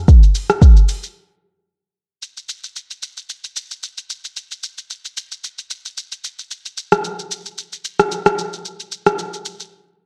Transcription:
0.08 kick, shaker
0.23 shaker
0.35 open hi-hat, shaker
0.50 cross-stick, shaker
0.62 kick, shaker
0.77 shaker
0.89 open hi-hat, shaker
1.03 shaker
2.22 shaker
2.37 shaker
2.49 shaker
2.64 shaker
2.76 shaker
2.91 shaker
3.03 shaker
3.17 shaker
3.29 shaker
3.44 shaker
3.56 shaker
3.71 shaker
3.83 shaker
3.98 shaker
4.10 shaker
4.25 shaker
4.37 shaker
4.51 shaker
4.63 shaker
4.78 shaker
4.90 shaker
5.05 shaker
5.17 shaker
5.32 shaker
5.44 shaker
5.58 shaker
5.71 shaker
5.85 shaker
5.97 shaker
6.12 shaker
6.24 shaker
6.39 shaker
6.51 shaker
6.66 shaker
6.77 shaker
6.92 cross-stick, shaker
7.04 shaker
7.19 shaker
7.31 shaker
7.46 shaker
7.58 shaker
7.73 shaker
7.85 shaker
7.99 cross-stick, shaker
8.12 shaker
8.26 cross-stick, shaker
8.38 shaker
8.53 shaker
8.65 shaker
8.80 shaker
8.92 shaker
9.06 cross-stick, shaker
9.19 shaker
9.33 shaker
9.45 shaker
9.60 shaker

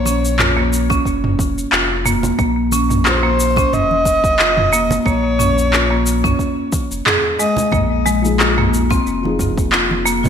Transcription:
Already playing: A#1 C#5
0.06 C#4, muted conga, shaker
0.25 shaker
0.39 F4, clap, mid tom, shaker
0.57 A#3
0.73 shaker
0.90 C#4, kick, muted conga, high conga, shaker
1.05 F1, kick, shaker
1.24 mid tom
1.39 kick, high conga, shaker
1.58 shaker
1.72 F1 F4, clap, shaker
2.06 A#3, mid tom, shaker
2.23 low conga, shaker
2.39 A#1 A#3, kick, muted conga, high conga, shaker
2.72 C#4, muted conga, shaker
2.90 mid tom, shaker
3.05 F4 C5, clap, shaker
3.23 A#3
3.40 shaker
3.56 C#4, kick, muted conga, high conga, low conga, shaker
3.73 F1 D#5, mid tom, shaker
3.91 high conga
4.05 kick, muted conga, shaker
4.24 kick, shaker
4.39 F4, clap, shaker
4.57 mid tom, high conga
4.73 A#3, shaker
4.90 muted conga, low conga, shaker
5.06 A#1 A#3 C#5, kick, muted conga, high conga, shaker
5.39 C#4, mid tom, muted conga, shaker
5.58 shaker
5.73 F4, clap, shaker
5.91 A#3
6.06 shaker
6.24 C#4, kick, mid tom, muted conga, high conga, shaker
6.39 kick, shaker
6.72 kick, high conga, shaker
6.90 F1, shaker
7.06 G#4, clap, mid tom, shaker
7.39 G#3 D#5, shaker
7.57 low conga, shaker
7.71 A#1 A#3, kick, mid tom, muted conga, high conga, shaker
8.06 G#3, muted conga, shaker
8.22 F3 A#3 D#4 G#4, shaker
8.39 F4, clap, shaker
8.58 A#3, mid tom
8.74 shaker
8.90 C4, kick, muted conga, high conga, low conga, shaker
9.06 F1, shaker
9.22 F3 A#3 D#4, high conga
9.27 G#4
9.39 kick, mid tom, muted conga, shaker
9.58 kick, shaker
9.72 F4, clap, shaker
9.91 high conga
10.06 A#3, shaker
10.24 mid tom, muted conga, low conga, shaker

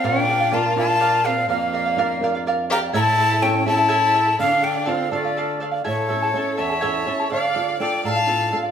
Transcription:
0.04 A#2 D4 A#4 D5 F5 G5
0.29 A#4 D5 F5
0.40 D5 F5
0.51 D4 F4 A#4 D5 F5 A5
0.76 D4 F4 A#4 D5 F5 A5
0.89 D5 F5
1.01 A#4 D5 F5
1.24 C4 A#4 D5 F5
1.38 D5 F5
1.48 F2 A#3 A#4 D5 F5
1.73 A#4 D5 F5
1.86 D5 F5
1.97 D4 F4 A#4 D5 F5
2.20 D4 F4 A#4 D5 F5
2.35 D5 F5
2.47 A#4 D5 F5
2.70 G4 A#4 D5 F5 A#5
2.81 D5 F5
2.93 A2 E4 A4 C#5 E5 A5 A#5
3.00 A5
3.18 E4 A4 E5 A5
3.32 E4 A4 A5
3.42 C#4 E4 A4 E5 G5 A5
3.66 C#4 E4 A4 E5 A5
3.77 E4 A4 A5
3.89 E4 A4 C#5 E5 A5
4.14 E4 A4 E5 A5
4.26 E4 A4 A5
4.38 D3 D4 A4 D5 F5
4.62 D4 A4 D5 F5 G5
4.75 D5 F5
4.85 C4 D4 F4 A4 D5 F5
5.11 A3 D4 F4 A4 D5 F5
5.24 D5 F5
5.37 A4 D5 F5
5.60 A4 D5 F5
5.72 D5 F5
5.84 A2 E4 A4 C#5 E5 A5
6.09 C#4 E4 A4 E5 A5
6.22 E4 A4 A5
6.34 C#4 E4 A4 E5 A5
6.57 E2 E4 A4 C#5 E5 A5
6.70 E4 A4 A5
6.81 C#4 E4 A4 C#5 E5 A5
7.07 C#4 E4 A4 E5 A5
7.20 E4 A4 A5
7.30 D3 A4 D5 F5
7.54 D4 F4 A4 D5 F5
7.68 D5 F5
7.79 D4 F4 A4 D5 F5 G5
8.04 A2 A4 D5 F5 A#5
8.09 A5
8.16 F5
8.27 D4 F4 A4 D5 F5
8.52 D4 F4 A4 D5 F5
8.63 D5 F5

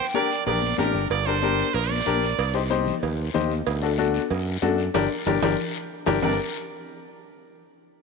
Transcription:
Already playing: G5
0.14 D4 G4 A#4 D5, high conga, short guiro
0.31 short guiro
0.46 A#1 D4 G4 A#4 D5, cowbell, low conga, long guiro
0.62 high conga
0.78 A1 D4 G4 A#4, high conga, low timbale, short guiro
0.94 G1, short guiro
1.10 G1 D5, cowbell, long guiro
1.26 D4 G4 A#4 C5
1.42 D4 G4 A#4, high conga, short guiro
1.58 short guiro
1.74 A#1 A#4, cowbell, long guiro
1.90 D5, high conga
2.06 A#1 D4 G4 A#4, high conga, short guiro
2.23 short guiro
2.38 C2, cowbell, long guiro
2.54 D#4 G4 C5
2.70 D#4 G4 C5, high conga, short guiro
2.86 low conga, short guiro
3.03 D#2, cowbell, long guiro
3.34 D#2 D#4 G4 C5, high conga, low conga, short guiro
3.50 short guiro
3.66 D2, cowbell, long guiro
3.82 D4 F#4 A4
3.98 D4 F#4 A4, high conga, short guiro
4.14 short guiro
4.30 F#2, cowbell, long guiro
4.62 F#2 D4 F#4 A4, high conga, low timbale, short guiro
4.78 short guiro
4.94 G1 D4 G4 A#4, low conga, high timbale, long guiro
5.26 G1 D4 G4 A#4, low conga, high timbale, long guiro
5.42 G1 D4 G4 A#4, low conga, high timbale, long guiro
6.06 G1 D4 G4 A#4, low conga, high timbale, long guiro
6.22 G1 D4 G4 A#4 D5, low conga, low timbale, long guiro

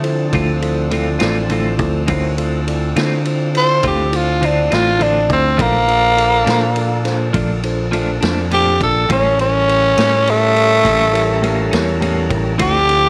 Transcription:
Already playing: D3 F3 A3 C4 D4 A4
0.03 E4 F4 A4 C5, ride
0.32 D2 D3 A3 C4 E4 F4 A4 C5, kick, ride
0.62 E4 F4 A4 C5, ride
0.91 D3 A3 C4 E4 F4 A4 C5, ride
1.19 A1 A3 C4 E4 F4 A4 D5, snare, ride
1.50 D3 A3 C4 E4 F4 A4 C5, ride
1.78 D2 E4 F4 A4 C5, kick, ride
2.06 D2 D3 A3 C4 C#4 D#4 E4 F4 F#4 A#4, kick, ride
2.11 A4 C5
2.37 C4 D4 E4 F4 A4 C5, ride
2.67 E4 F4 A4 D5, ride
2.96 D3 A3 C4 E4 F4 A4 C5, snare, ride
3.25 E4 F4 A4 C5, ride
3.53 E4 F4 A4 C5, ride
3.57 C5
3.83 D2 D3 A3 C4 E4 F4 A4 C5, kick, ride
3.87 G4
4.11 E4 F4 A4 C5, ride
4.16 F4
4.41 D3 A3 C4 E4 F4 A4 C5, ride
4.45 D4
4.70 A1 A3 C4 E4 F4 A4 C5, snare, ride
4.99 D3 A3 C4 D4 E4 F4 A4 C5, ride
5.28 D2 E4 F4 A4 C5, kick, ride
5.33 C4
5.57 A#1 A#2 F3 F#3 A3 A#3 B3 D4 D#4 F4 A4 A#4 C5, kick, ride
5.87 F3 A#3 D4 F4 A4 C5, ride
6.16 D4 F4 A4 C5, ride
6.44 A#2 F3 A3 D4 F4 A4 C5, ride
6.48 snare
6.76 D4 F4 A4 D5, ride
7.04 D4 F4 A4 C5, snare, ride
7.33 A#1 A#2 F3 A3 D4 F4 A4 D5, kick, ride
7.63 D4 F4 A4 C5, ride
7.91 A#2 F3 A3 D4 F4 A4 C5, ride
8.21 F2 F3 A3 D4 F4 A4 C5, snare, ride
8.51 A#2 F3 A3 D4 F4 G4 A4 C5, ride
8.81 A#1 D4 F4 A4 D5, kick, ride
9.08 A1 A2 G3 A#3 C#4 E4 G4 A4 A#4 C#5, kick, ride
9.39 C#4 E4 G4 A#4 C#5, ride
9.68 E4 G4 A#4 C#5, ride
9.97 A2 G3 A#3 C#4 E4 G4 A#4, snare, ride
10.26 E4 G4 A#4 C#5, ride
10.30 A3
10.55 E4 G4 A#4 C#5, ride
10.84 A1 A2 G3 A#3 C#4 E4 G4 A#4 C#5, kick, ride
11.12 E4 G4 A#4 C#5, ride
11.42 A2 G3 A#3 C#4 E4 G4 A#4 C#5, ride
11.71 E2 G3 A#3 C#4 E4 G4 A#4 C#5, snare, ride
12.01 A2 G3 A#3 C#4 E4 G4 A#4 C#5 A5, ride
12.28 A1 E4 G4 A#4 C#5 G5, kick, ride
12.58 D2 D3 F3 A3 C4 D4 E4 F4 G4 A4 C5, kick, ride
12.89 E4 F4 A4 C5, ride

